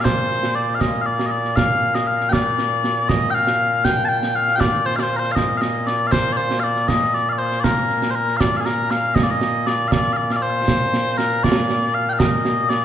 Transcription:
Already playing: bagpipes A#2 A#3
0.01 bagpipes C5 F5
0.05 concert bass drum, snare
0.31 snare
0.43 snare
0.55 bagpipes D5
0.75 bagpipes F5
0.81 bagpipes D#5, concert bass drum, snare
1.02 bagpipes F5
1.06 bagpipes D5
1.19 snare
1.26 bagpipes D#5
1.31 bagpipes D5
1.45 snare
1.56 bagpipes F5, concert bass drum, snare
1.95 bagpipes D#5, snare
2.07 bagpipes F5
2.21 snare
2.29 bagpipes D5 G5, concert bass drum, snare
2.59 snare
2.84 snare
3.09 bagpipes D#5, concert bass drum, snare
3.31 bagpipes F5 G5, snare
3.47 snare
3.85 bagpipes G5, concert bass drum, snare
4.05 bagpipes G5 A5
4.23 snare
4.35 bagpipes F5
4.48 snare
4.56 bagpipes G5
4.60 bagpipes D5, concert bass drum, snare
4.86 bagpipes C5
4.96 bagpipes D5 F5, snare
5.03 bagpipes C5
5.16 bagpipes A#4 C5
5.24 snare
5.32 bagpipes D#5 F5
5.36 concert bass drum, snare
5.58 bagpipes D#5 F5
5.62 snare
5.87 bagpipes D5, snare
6.07 bagpipes F5
6.12 bagpipes C5, concert bass drum, snare
6.33 bagpipes D5
6.37 bagpipes C5, snare
6.51 snare
6.60 bagpipes D5 F5
6.76 snare
6.88 bagpipes D#5, concert bass drum, snare
7.14 bagpipes D5, snare
7.29 bagpipes D5 F5
7.38 bagpipes C5
7.52 snare
7.60 bagpipes A#4 D5
7.64 concert bass drum, snare
7.90 snare
8.02 snare
8.10 bagpipes C5
8.15 bagpipes A#4
8.28 snare
8.37 bagpipes D5 F5, concert bass drum, snare
8.57 bagpipes G#4 F5
8.66 bagpipes A#4, snare
8.91 bagpipes F5, snare
9.15 bagpipes D#5, concert bass drum, snare
9.23 bagpipes D5
9.31 bagpipes D#5
9.41 snare
9.66 bagpipes D5, snare
9.88 bagpipes D5 F5
9.92 concert bass drum, snare
10.13 bagpipes D5 F5
10.30 bagpipes F5, snare
10.36 bagpipes D5
10.42 bagpipes C5
10.68 concert bass drum, snare
10.94 snare
11.17 bagpipes A#4, snare
11.43 bagpipes D5, concert bass drum, snare
11.57 snare
11.69 snare
11.82 snare
11.94 bagpipes F5
12.09 bagpipes F5 G5
12.19 bagpipes D#5, concert bass drum, snare
12.45 snare
12.69 bagpipes D5, snare

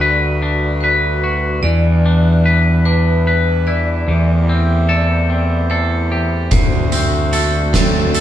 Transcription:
Already playing: picked electric bass D2, clean electric guitar D3 D4, harmonium G3 D4 F#4 B4
0.00 clean electric guitar B4, vibraphone D5
0.42 clean electric guitar D4
0.81 vibraphone B4, clean electric guitar B4
1.24 clean electric guitar F#4
1.63 picked electric bass E2, clean electric guitar E3, harmonium G3 E4 B4, vibraphone D5
2.06 clean electric guitar D4
2.46 clean electric guitar B4
2.85 clean electric guitar D4, vibraphone B4
3.27 clean electric guitar B4
3.67 clean electric guitar E4, vibraphone D5
4.07 picked electric bass E2, clean electric guitar E3, harmonium A3 G4 C5
4.49 clean electric guitar C4
4.89 clean electric guitar A4, vibraphone D5
5.30 clean electric guitar C4
5.70 clean electric guitar A4, vibraphone C5
6.12 clean electric guitar G4
6.51 picked electric bass D2, clean electric guitar D3, harmonium D4 F#4 C5, vibraphone C5, kick, closed hi-hat
6.92 clean electric guitar C4, closed hi-hat
7.33 clean electric guitar A4, closed hi-hat
7.73 clean electric guitar C4, vibraphone A4, kick, snare, closed hi-hat
8.14 clean electric guitar A4, closed hi-hat

